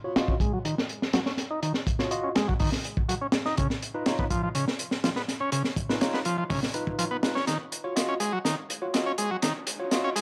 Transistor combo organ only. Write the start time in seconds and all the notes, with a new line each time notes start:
0.29 C#4
0.40 G#3
0.53 F#3
0.65 D#3
1.14 F#3
1.26 C#4
1.51 D#4
1.62 D#3
2.24 C#4
2.35 G#3
2.48 F#3
2.60 D#3
3.09 F#3
3.21 C#4
3.46 D#4
3.58 C#3
4.19 B3
4.30 F3
4.43 F3
4.55 C#3
5.04 F3
5.16 B3
5.40 C#4
5.52 C#3
6.14 B3
6.25 F3
6.38 F3
6.50 C#3
6.99 F3
7.11 B3
7.35 C#4
7.47 D#3
8.09 C#4
8.20 G#3
8.33 F#3
8.45 D#3
9.06 C#4
9.18 G#3
9.31 F#3
9.43 D#3
10.04 C#4
10.16 G#3